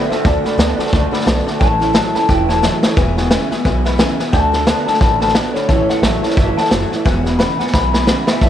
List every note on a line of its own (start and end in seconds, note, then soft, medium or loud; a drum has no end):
0.00 0.11 D3 medium
0.00 0.10 A3 loud
0.09 0.23 D3 medium
0.09 0.23 A3 medium
0.09 0.24 A3 medium
0.09 0.24 D4 medium
0.09 0.24 F#4 medium
0.09 0.23 C5 medium
0.09 0.19 D5 medium
0.09 0.24 E5 medium
0.09 0.20 F#5 medium
0.09 0.20 A5 medium
0.09 muted upright bass stroke medium
0.09 snare soft
0.23 0.39 D2 loud
0.23 0.44 D3 medium
0.23 0.43 D3 medium
0.23 0.45 A3 medium
0.23 0.43 A3 medium
0.23 0.44 D4 medium
0.23 0.43 F#4 loud
0.23 1.24 D5 loud
0.23 0.37 D5 loud
0.23 0.37 F#5 medium
0.23 0.38 A5 loud
0.23 kick loud
0.23 snare soft
0.44 0.58 D3 medium
0.44 0.58 A3 medium
0.44 0.57 A3 medium
0.44 0.57 D4 medium
0.44 0.58 F#4 medium
0.44 0.53 D5 medium
0.44 0.53 F#5 medium
0.44 0.54 B5 medium
0.44 muted upright bass stroke medium
0.44 snare soft
0.57 0.75 D2 medium
0.57 0.78 D3 medium
0.57 0.77 D3 loud
0.57 0.79 A3 medium
0.57 0.77 B3 loud
0.57 0.78 D4 medium
0.57 0.77 F#4 medium
0.57 0.71 D5 loud
0.57 0.71 F#5 medium
0.57 0.71 A5 loud
0.57 snare loud
0.57 hi-hat pedal medium
0.78 0.91 D3 medium
0.78 0.92 A3 medium
0.78 0.91 A3 medium
0.78 0.92 D4 medium
0.78 0.93 F#4 medium
0.78 0.88 D5 medium
0.78 0.88 F#5 medium
0.78 0.88 A5 loud
0.78 snare soft
0.86 snare soft
0.91 1.10 C#2 medium
0.91 1.12 D3 medium
0.91 1.11 D3 medium
0.91 1.12 A3 medium
0.91 1.11 A3 medium
0.91 1.11 D4 medium
0.91 1.10 F#4 medium
0.91 1.05 D5 medium
0.91 1.05 F#5 medium
0.91 1.05 A5 loud
0.91 kick loud
0.91 snare soft
1.11 1.25 D3 medium
1.11 1.26 A3 medium
1.11 1.25 A3 medium
1.11 1.26 D4 medium
1.11 1.26 F#4 medium
1.11 1.21 D5 medium
1.11 1.21 F#5 medium
1.11 1.22 B5 loud
1.11 muted upright bass stroke medium
1.11 snare soft
1.21 snare soft
1.25 1.44 B1 medium
1.25 1.46 D3 loud
1.25 1.45 D3 medium
1.25 1.47 A3 loud
1.25 1.45 B3 loud
1.25 1.46 D4 loud
1.25 1.45 F#4 loud
1.25 1.38 D5 loud
1.25 1.39 F#5 loud
1.25 1.39 A5 loud
1.25 snare loud
1.25 hi-hat pedal loud
1.46 1.59 D3 medium
1.46 1.60 A3 medium
1.46 1.59 A3 medium
1.46 1.61 D4 medium
1.46 1.61 F#4 medium
1.46 1.55 D5 medium
1.46 1.55 F#5 medium
1.46 1.55 A5 loud
1.46 snare soft
1.60 1.99 A1 medium
1.60 1.81 A2 medium
1.60 1.79 A2 medium
1.60 1.81 E3 medium
1.60 1.79 E3 medium
1.60 1.81 A3 medium
1.60 1.80 C#4 medium
1.60 1.78 E4 medium
1.60 1.73 C#5 loud
1.60 1.73 E5 medium
1.60 2.13 A5 loud
1.60 1.73 A5 loud
1.60 kick loud
1.60 snare soft
1.80 1.94 A2 medium
1.80 1.94 E3 medium
1.80 1.92 A3 medium
1.80 1.93 C#4 medium
1.80 1.93 E4 medium
1.80 1.90 C#5 medium
1.80 1.90 E5 medium
1.80 1.90 A5 medium
1.80 snare soft
1.93 2.14 A2 medium
1.93 2.13 A2 medium
1.93 2.14 E3 medium
1.93 2.13 F#3 loud
1.93 2.14 A3 medium
1.93 2.13 C#4 medium
1.93 2.12 E4 loud
1.93 2.07 C#5 medium
1.93 2.07 E5 medium
1.93 2.07 A5 loud
1.93 snare loud
1.93 hi-hat pedal medium
2.13 2.27 A2 medium
2.13 2.27 E3 medium
2.13 2.27 A3 soft
2.13 2.28 C#4 medium
2.13 2.28 E4 medium
2.13 2.23 C#5 medium
2.13 2.23 E5 medium
2.13 2.29 A5 loud
2.13 2.24 B5 medium
2.13 muted upright bass stroke medium
2.13 snare soft
2.27 2.67 E1 medium
2.27 2.47 A2 medium
2.27 2.48 E3 medium
2.27 2.47 E3 medium
2.27 2.48 A3 medium
2.27 2.47 C#4 medium
2.27 2.46 E4 medium
2.27 2.41 C#5 medium
2.27 2.41 E5 medium
2.27 2.49 G5 loud
2.27 2.41 A5 medium
2.27 kick loud
2.27 snare soft
2.47 2.62 A2 medium
2.47 2.62 E3 loud
2.47 2.62 A3 soft
2.47 2.62 C#4 soft
2.47 2.62 E4 medium
2.47 2.57 C#5 medium
2.47 2.58 E5 medium
2.47 2.63 A5 loud
2.47 2.58 A5 medium
2.47 snare soft
2.62 2.83 A2 medium
2.62 2.81 A2 medium
2.62 2.83 E3 medium
2.62 2.81 F#3 loud
2.62 2.83 A3 loud
2.62 2.82 C#4 loud
2.62 2.81 E4 medium
2.62 2.75 C#5 loud
2.62 2.75 E5 medium
2.62 2.75 A5 loud
2.62 snare medium
2.62 hi-hat pedal medium
2.82 2.96 A2 medium
2.82 2.96 E3 medium
2.82 2.97 A3 medium
2.82 2.97 C#4 medium
2.82 2.96 E4 medium
2.82 2.92 C#5 medium
2.82 2.92 E5 medium
2.82 2.92 A5 loud
2.82 muted upright bass stroke medium
2.82 snare medium
2.96 3.35 E1 medium
2.96 3.17 E2 loud
2.96 3.15 E2 medium
2.96 3.17 B2 loud
2.96 3.15 B2 medium
2.96 3.17 E3 loud
2.96 3.17 G#3 loud
2.96 3.17 B3 loud
2.96 3.16 E4 loud
2.96 3.09 B4 loud
2.96 3.09 E5 loud
2.96 3.09 G#5 loud
2.96 kick loud
2.96 snare soft
3.17 3.30 E2 medium
3.17 3.30 B2 medium
3.17 3.30 E3 medium
3.17 3.31 G#3 medium
3.17 3.31 B3 medium
3.17 3.31 E4 medium
3.17 3.26 B4 medium
3.17 3.26 E5 medium
3.17 3.26 G#5 loud
3.17 snare soft
3.31 3.51 E2 medium
3.31 3.49 E2 medium
3.31 3.51 B2 medium
3.31 3.49 C#3 loud
3.31 3.51 E3 medium
3.31 3.50 G#3 medium
3.31 3.50 B3 loud
3.31 3.48 E4 loud
3.31 3.43 B4 loud
3.31 3.43 E5 loud
3.31 3.43 G#5 loud
3.31 snare loud
3.31 hi-hat pedal medium
3.50 3.64 E2 medium
3.50 3.64 B2 medium
3.50 3.63 E3 medium
3.50 3.63 G#3 medium
3.50 3.65 B3 medium
3.50 3.64 E4 medium
3.50 3.60 B4 medium
3.50 3.60 E5 medium
3.50 3.60 G#5 loud
3.50 muted upright bass stroke medium
3.50 snare soft
3.64 4.03 B1 medium
3.64 3.84 E2 medium
3.64 3.84 B2 medium
3.64 3.85 E3 medium
3.64 3.85 G#3 medium
3.64 3.84 B3 medium
3.64 3.83 E4 medium
3.64 3.77 B4 medium
3.64 3.77 E5 medium
3.64 3.78 G#5 loud
3.64 kick loud
3.64 snare soft
3.84 3.98 E2 medium
3.84 3.98 B2 loud
3.84 3.97 E3 soft
3.84 3.98 G#3 medium
3.84 3.98 B3 medium
3.84 3.98 E4 medium
3.84 3.94 B4 medium
3.84 3.94 E5 medium
3.84 3.94 B5 loud
3.84 snare soft
3.98 4.19 E2 loud
3.98 4.18 E2 medium
3.98 4.19 B2 loud
3.98 4.18 C#3 loud
3.98 4.19 E3 medium
3.98 4.19 G#3 loud
3.98 4.18 B3 loud
3.98 4.17 E4 loud
3.98 4.12 B4 loud
3.98 4.12 E5 loud
3.98 4.12 G#5 loud
3.98 snare loud
3.98 hi-hat pedal medium
4.18 4.32 E2 medium
4.18 4.32 B2 medium
4.18 4.31 E3 medium
4.18 4.32 G#3 medium
4.18 4.33 B3 medium
4.18 4.33 E4 medium
4.18 4.28 B4 medium
4.18 4.28 E5 medium
4.18 4.28 G#5 loud
4.18 muted upright bass stroke medium
4.18 snare soft
4.31 4.71 D2 loud
4.31 4.52 D3 medium
4.31 4.53 A3 medium
4.31 4.52 A3 loud
4.31 4.52 D4 medium
4.31 4.50 F#4 medium
4.31 4.45 D5 loud
4.31 4.46 F#5 medium
4.31 4.85 A5 loud
4.31 4.46 A5 loud
4.31 kick loud
4.31 snare soft
4.52 4.66 D3 medium
4.52 4.66 A3 medium
4.52 4.65 A3 medium
4.52 4.66 D4 medium
4.52 4.66 F#4 medium
4.52 4.62 D5 medium
4.52 4.62 F#5 medium
4.52 4.62 A5 medium
4.52 snare soft
4.66 4.87 D3 medium
4.66 4.85 D3 medium
4.66 4.87 A3 medium
4.66 4.86 B3 loud
4.66 4.86 D4 medium
4.66 4.84 F#4 loud
4.66 4.79 D5 loud
4.66 4.79 F#5 medium
4.66 4.79 A5 loud
4.66 snare loud
4.66 hi-hat pedal medium
4.85 5.00 D3 medium
4.85 5.00 A3 medium
4.85 5.00 A3 soft
4.85 5.01 D4 soft
4.85 5.00 F#4 medium
4.85 4.96 D5 medium
4.85 4.96 F#5 medium
4.85 4.99 A5 loud
4.85 4.96 A5 medium
4.85 muted upright bass stroke medium
4.85 snare soft
4.94 snare soft
5.00 5.39 A1 medium
5.00 5.21 D3 medium
5.00 5.20 D3 medium
5.00 5.21 A3 medium
5.00 5.20 A3 loud
5.00 5.21 D4 medium
5.00 5.19 F#4 medium
5.00 5.14 D5 medium
5.00 5.14 F#5 medium
5.00 5.19 A5 loud
5.00 5.14 B5 medium
5.00 kick loud
5.00 snare soft
5.20 5.34 D3 medium
5.20 5.34 A3 loud
5.20 5.35 A3 soft
5.20 5.35 D4 soft
5.20 5.35 F#4 medium
5.20 5.29 D5 medium
5.20 5.30 F#5 medium
5.20 5.34 A5 loud
5.20 5.30 B5 medium
5.20 snare soft
5.28 snare soft
5.34 5.55 D3 medium
5.34 5.54 D3 medium
5.34 5.56 A3 loud
5.34 5.54 B3 loud
5.34 5.56 D4 medium
5.34 5.54 F#4 loud
5.34 5.47 D5 loud
5.34 5.47 F#5 medium
5.34 5.47 A5 loud
5.34 snare loud
5.34 hi-hat pedal loud
5.54 5.68 D3 medium
5.54 5.68 A3 medium
5.54 5.70 A3 soft
5.54 5.70 D4 soft
5.54 5.69 F#4 medium
5.54 5.88 C#5 loud
5.54 5.63 D5 medium
5.54 5.64 F#5 medium
5.54 5.64 B5 medium
5.54 muted upright bass stroke medium
5.54 snare soft
5.68 5.83 A1 medium
5.68 5.87 A2 medium
5.68 5.90 A2 medium
5.68 5.88 E3 loud
5.68 5.90 E3 medium
5.68 5.90 A3 loud
5.68 5.89 C#4 loud
5.68 5.88 E4 medium
5.68 5.81 C#5 loud
5.68 5.81 E5 medium
5.68 5.81 A5 loud
5.68 kick loud
5.68 snare soft
5.88 6.02 A2 medium
5.88 6.02 E3 medium
5.88 6.03 A3 medium
5.88 6.04 C#4 medium
5.88 6.03 E4 medium
5.88 5.97 C#5 medium
5.88 5.97 E5 medium
5.88 6.04 F#5 loud
5.88 5.98 A5 medium
5.88 muted upright bass stroke medium
5.88 snare soft
6.02 6.20 A1 medium
6.02 6.23 A2 medium
6.02 6.22 A2 medium
6.02 6.24 E3 medium
6.02 6.22 F#3 loud
6.02 6.24 A3 medium
6.02 6.23 C#4 medium
6.02 6.22 E4 medium
6.02 6.15 C#5 loud
6.02 6.15 E5 medium
6.02 6.22 E5 loud
6.02 6.15 A5 loud
6.02 snare loud
6.02 hi-hat pedal medium
6.22 6.36 A2 medium
6.22 6.36 E3 medium
6.22 6.36 A3 medium
6.22 6.37 C#4 medium
6.22 6.37 E4 medium
6.22 6.36 C#5 loud
6.22 6.31 C#5 medium
6.22 6.32 E5 medium
6.22 6.32 A5 medium
6.22 muted upright bass stroke medium
6.22 snare soft
6.30 snare soft
6.37 6.54 G1 medium
6.37 6.55 A2 medium
6.37 6.57 E3 medium
6.37 6.56 E3 medium
6.37 6.57 A3 medium
6.37 6.56 C#4 medium
6.37 6.55 E4 medium
6.37 6.49 C#5 medium
6.37 6.57 E5 loud
6.37 6.49 E5 medium
6.37 6.49 A5 medium
6.37 kick loud
6.37 snare soft
6.56 6.70 A2 medium
6.56 6.70 E3 loud
6.56 6.71 A3 soft
6.56 6.70 C#4 medium
6.56 6.71 E4 medium
6.56 6.66 C#5 medium
6.56 6.66 E5 medium
6.56 6.66 F#5 medium
6.56 6.71 A5 loud
6.56 muted upright bass stroke medium
6.56 snare soft
6.65 snare soft
6.71 6.88 F#1 medium
6.71 6.91 A2 medium
6.71 6.89 A2 medium
6.71 6.91 E3 medium
6.71 6.90 F#3 loud
6.71 6.92 A3 loud
6.71 6.91 C#4 loud
6.71 6.90 E4 loud
6.71 6.83 C#5 loud
6.71 6.83 E5 medium
6.71 6.90 F#5 loud
6.71 6.84 A5 loud
6.71 snare loud
6.71 hi-hat pedal loud
6.90 7.04 A2 medium
6.90 7.04 E3 medium
6.90 7.05 A3 medium
6.90 7.06 C#4 medium
6.90 7.05 E4 medium
6.90 7.00 C#5 medium
6.90 7.05 E5 loud
6.90 7.00 E5 medium
6.90 7.00 A5 medium
6.90 snare soft
7.05 7.43 E1 loud
7.05 7.25 E2 medium
7.05 7.23 E2 medium
7.05 7.25 B2 medium
7.05 7.24 B2 medium
7.05 7.25 E3 loud
7.05 7.25 G#3 loud
7.05 7.24 B3 loud
7.05 7.23 E4 loud
7.05 7.17 B4 loud
7.05 7.17 E5 loud
7.05 7.25 F#5 loud
7.05 7.18 G#5 loud
7.05 kick loud
7.05 snare soft
7.24 7.38 E2 medium
7.24 7.38 B2 medium
7.24 7.38 E3 medium
7.24 7.38 G#3 medium
7.24 7.39 B3 medium
7.24 7.39 E4 medium
7.24 7.34 B4 medium
7.24 7.34 E5 medium
7.24 7.34 B5 medium
7.24 snare soft
7.39 7.59 E2 medium
7.39 7.57 E2 medium
7.39 7.59 B2 medium
7.39 7.58 C#3 loud
7.39 7.59 E3 medium
7.39 7.60 G#3 medium
7.39 7.59 B3 medium
7.39 7.58 E4 medium
7.39 7.51 B4 loud
7.39 7.51 E5 loud
7.39 7.52 F#5 loud
7.39 7.58 B5 loud
7.39 snare loud
7.39 hi-hat pedal medium
7.59 7.72 E2 medium
7.59 7.72 B2 medium
7.59 7.72 E3 soft
7.59 7.73 G#3 medium
7.59 7.73 B3 medium
7.59 7.73 E4 medium
7.59 7.68 B4 medium
7.59 7.68 E5 medium
7.59 7.73 F#5 loud
7.59 7.68 G#5 medium
7.59 muted upright bass stroke medium
7.59 snare soft
7.67 snare soft
7.73 8.11 B1 medium
7.73 7.91 E2 medium
7.73 7.92 B2 medium
7.73 7.93 E3 medium
7.73 7.93 G#3 medium
7.73 7.92 B3 medium
7.73 7.91 E4 medium
7.73 7.86 B4 medium
7.73 7.86 E5 medium
7.73 7.86 G#5 medium
7.73 7.92 B5 loud
7.73 kick loud
7.73 snare medium
7.92 8.06 E2 medium
7.92 8.06 B2 loud
7.92 8.06 E3 soft
7.92 8.07 G#3 medium
7.92 8.07 B3 medium
7.92 8.07 E4 medium
7.92 8.02 B4 medium
7.92 8.02 E5 medium
7.92 8.02 G#5 medium
7.92 8.40 B5 loud
7.92 snare medium
8.07 8.27 E2 medium
8.07 8.25 E2 medium
8.07 8.27 B2 medium
8.07 8.26 C#3 loud
8.07 8.27 E3 medium
8.07 8.27 G#3 loud
8.07 8.27 B3 loud
8.07 8.26 E4 loud
8.07 8.19 B4 loud
8.07 8.19 E5 medium
8.07 8.20 B5 loud
8.07 snare loud
8.07 hi-hat pedal medium
8.27 8.40 E2 medium
8.27 8.40 B2 loud
8.27 8.40 E3 medium
8.27 8.42 G#3 medium
8.27 8.42 B3 medium
8.27 8.41 E4 medium
8.27 8.36 B4 medium
8.27 8.42 E5 loud
8.27 8.36 E5 medium
8.27 8.36 G#5 medium
8.27 muted upright bass stroke medium
8.27 snare medium
8.41 8.49 A1 medium
8.41 8.49 A2 medium
8.41 8.49 E3 medium
8.41 8.49 E3 loud
8.41 8.49 A3 medium
8.41 8.49 C#4 medium
8.41 8.49 E4 medium
8.41 8.49 C#5 medium
8.41 8.49 E5 medium
8.41 8.49 E5 loud
8.41 8.49 A5 loud
8.41 kick loud
8.41 snare soft